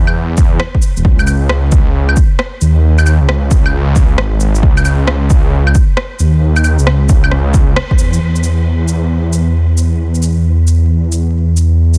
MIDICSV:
0, 0, Header, 1, 3, 480
1, 0, Start_track
1, 0, Key_signature, 4, "minor"
1, 0, Tempo, 447761
1, 1122, Time_signature, 4, 2, 24, 8
1, 12845, End_track
2, 0, Start_track
2, 0, Title_t, "Detuned saw bass"
2, 0, Program_c, 0, 39
2, 0, Note_on_c, 0, 40, 85
2, 630, Note_off_c, 0, 40, 0
2, 1037, Note_on_c, 0, 28, 91
2, 1115, Note_off_c, 0, 28, 0
2, 1124, Note_on_c, 0, 37, 95
2, 2312, Note_off_c, 0, 37, 0
2, 2801, Note_on_c, 0, 39, 104
2, 3418, Note_off_c, 0, 39, 0
2, 3439, Note_on_c, 0, 37, 84
2, 4472, Note_off_c, 0, 37, 0
2, 4484, Note_on_c, 0, 32, 91
2, 4953, Note_off_c, 0, 32, 0
2, 4963, Note_on_c, 0, 37, 92
2, 6152, Note_off_c, 0, 37, 0
2, 6642, Note_on_c, 0, 39, 100
2, 7259, Note_off_c, 0, 39, 0
2, 7275, Note_on_c, 0, 37, 84
2, 8310, Note_off_c, 0, 37, 0
2, 8559, Note_on_c, 0, 40, 97
2, 8787, Note_off_c, 0, 40, 0
2, 8797, Note_on_c, 0, 40, 81
2, 12845, Note_off_c, 0, 40, 0
2, 12845, End_track
3, 0, Start_track
3, 0, Title_t, "Drums"
3, 77, Note_on_c, 9, 75, 53
3, 184, Note_off_c, 9, 75, 0
3, 401, Note_on_c, 9, 82, 57
3, 404, Note_on_c, 9, 36, 102
3, 508, Note_off_c, 9, 82, 0
3, 512, Note_off_c, 9, 36, 0
3, 640, Note_on_c, 9, 37, 105
3, 747, Note_off_c, 9, 37, 0
3, 800, Note_on_c, 9, 36, 57
3, 881, Note_on_c, 9, 82, 51
3, 908, Note_off_c, 9, 36, 0
3, 988, Note_off_c, 9, 82, 0
3, 1038, Note_on_c, 9, 82, 29
3, 1124, Note_on_c, 9, 36, 122
3, 1146, Note_off_c, 9, 82, 0
3, 1232, Note_off_c, 9, 36, 0
3, 1278, Note_on_c, 9, 75, 55
3, 1278, Note_on_c, 9, 82, 27
3, 1363, Note_off_c, 9, 75, 0
3, 1363, Note_off_c, 9, 82, 0
3, 1363, Note_on_c, 9, 75, 47
3, 1363, Note_on_c, 9, 82, 52
3, 1470, Note_off_c, 9, 75, 0
3, 1470, Note_off_c, 9, 82, 0
3, 1601, Note_on_c, 9, 37, 103
3, 1709, Note_off_c, 9, 37, 0
3, 1841, Note_on_c, 9, 82, 49
3, 1845, Note_on_c, 9, 36, 105
3, 1948, Note_off_c, 9, 82, 0
3, 1952, Note_off_c, 9, 36, 0
3, 2238, Note_on_c, 9, 75, 52
3, 2320, Note_on_c, 9, 82, 53
3, 2324, Note_on_c, 9, 36, 97
3, 2345, Note_off_c, 9, 75, 0
3, 2427, Note_off_c, 9, 82, 0
3, 2431, Note_off_c, 9, 36, 0
3, 2561, Note_on_c, 9, 37, 104
3, 2668, Note_off_c, 9, 37, 0
3, 2802, Note_on_c, 9, 82, 50
3, 2909, Note_off_c, 9, 82, 0
3, 3200, Note_on_c, 9, 75, 59
3, 3200, Note_on_c, 9, 82, 30
3, 3284, Note_off_c, 9, 75, 0
3, 3284, Note_off_c, 9, 82, 0
3, 3284, Note_on_c, 9, 75, 53
3, 3284, Note_on_c, 9, 82, 52
3, 3391, Note_off_c, 9, 75, 0
3, 3391, Note_off_c, 9, 82, 0
3, 3523, Note_on_c, 9, 37, 99
3, 3630, Note_off_c, 9, 37, 0
3, 3762, Note_on_c, 9, 82, 50
3, 3763, Note_on_c, 9, 36, 103
3, 3869, Note_off_c, 9, 82, 0
3, 3871, Note_off_c, 9, 36, 0
3, 3919, Note_on_c, 9, 75, 56
3, 4026, Note_off_c, 9, 75, 0
3, 4243, Note_on_c, 9, 82, 52
3, 4244, Note_on_c, 9, 36, 102
3, 4350, Note_off_c, 9, 82, 0
3, 4351, Note_off_c, 9, 36, 0
3, 4482, Note_on_c, 9, 37, 99
3, 4589, Note_off_c, 9, 37, 0
3, 4721, Note_on_c, 9, 82, 47
3, 4829, Note_off_c, 9, 82, 0
3, 4878, Note_on_c, 9, 82, 28
3, 4963, Note_on_c, 9, 36, 109
3, 4986, Note_off_c, 9, 82, 0
3, 5071, Note_off_c, 9, 36, 0
3, 5117, Note_on_c, 9, 75, 58
3, 5117, Note_on_c, 9, 82, 31
3, 5200, Note_off_c, 9, 75, 0
3, 5200, Note_off_c, 9, 82, 0
3, 5200, Note_on_c, 9, 75, 51
3, 5200, Note_on_c, 9, 82, 54
3, 5307, Note_off_c, 9, 75, 0
3, 5307, Note_off_c, 9, 82, 0
3, 5440, Note_on_c, 9, 37, 105
3, 5547, Note_off_c, 9, 37, 0
3, 5682, Note_on_c, 9, 82, 51
3, 5684, Note_on_c, 9, 36, 104
3, 5789, Note_off_c, 9, 82, 0
3, 5791, Note_off_c, 9, 36, 0
3, 6077, Note_on_c, 9, 75, 53
3, 6161, Note_on_c, 9, 82, 54
3, 6164, Note_on_c, 9, 36, 94
3, 6184, Note_off_c, 9, 75, 0
3, 6268, Note_off_c, 9, 82, 0
3, 6271, Note_off_c, 9, 36, 0
3, 6400, Note_on_c, 9, 37, 96
3, 6507, Note_off_c, 9, 37, 0
3, 6640, Note_on_c, 9, 82, 54
3, 6747, Note_off_c, 9, 82, 0
3, 7037, Note_on_c, 9, 75, 63
3, 7037, Note_on_c, 9, 82, 32
3, 7121, Note_off_c, 9, 75, 0
3, 7121, Note_off_c, 9, 82, 0
3, 7121, Note_on_c, 9, 75, 56
3, 7121, Note_on_c, 9, 82, 57
3, 7229, Note_off_c, 9, 75, 0
3, 7229, Note_off_c, 9, 82, 0
3, 7277, Note_on_c, 9, 82, 32
3, 7361, Note_on_c, 9, 37, 106
3, 7385, Note_off_c, 9, 82, 0
3, 7468, Note_off_c, 9, 37, 0
3, 7600, Note_on_c, 9, 82, 54
3, 7604, Note_on_c, 9, 36, 102
3, 7707, Note_off_c, 9, 82, 0
3, 7711, Note_off_c, 9, 36, 0
3, 7758, Note_on_c, 9, 75, 62
3, 7841, Note_on_c, 9, 37, 55
3, 7865, Note_off_c, 9, 75, 0
3, 7948, Note_off_c, 9, 37, 0
3, 8082, Note_on_c, 9, 82, 57
3, 8084, Note_on_c, 9, 36, 93
3, 8190, Note_off_c, 9, 82, 0
3, 8191, Note_off_c, 9, 36, 0
3, 8323, Note_on_c, 9, 37, 101
3, 8430, Note_off_c, 9, 37, 0
3, 8480, Note_on_c, 9, 36, 58
3, 8562, Note_on_c, 9, 82, 53
3, 8587, Note_off_c, 9, 36, 0
3, 8669, Note_off_c, 9, 82, 0
3, 8718, Note_on_c, 9, 82, 32
3, 8826, Note_off_c, 9, 82, 0
3, 8959, Note_on_c, 9, 82, 29
3, 9043, Note_off_c, 9, 82, 0
3, 9043, Note_on_c, 9, 82, 48
3, 9150, Note_off_c, 9, 82, 0
3, 9520, Note_on_c, 9, 82, 52
3, 9628, Note_off_c, 9, 82, 0
3, 10001, Note_on_c, 9, 82, 54
3, 10108, Note_off_c, 9, 82, 0
3, 10481, Note_on_c, 9, 82, 51
3, 10588, Note_off_c, 9, 82, 0
3, 10878, Note_on_c, 9, 82, 29
3, 10962, Note_off_c, 9, 82, 0
3, 10962, Note_on_c, 9, 82, 50
3, 11069, Note_off_c, 9, 82, 0
3, 11441, Note_on_c, 9, 82, 48
3, 11549, Note_off_c, 9, 82, 0
3, 11922, Note_on_c, 9, 82, 52
3, 12029, Note_off_c, 9, 82, 0
3, 12403, Note_on_c, 9, 82, 50
3, 12510, Note_off_c, 9, 82, 0
3, 12799, Note_on_c, 9, 82, 29
3, 12845, Note_off_c, 9, 82, 0
3, 12845, End_track
0, 0, End_of_file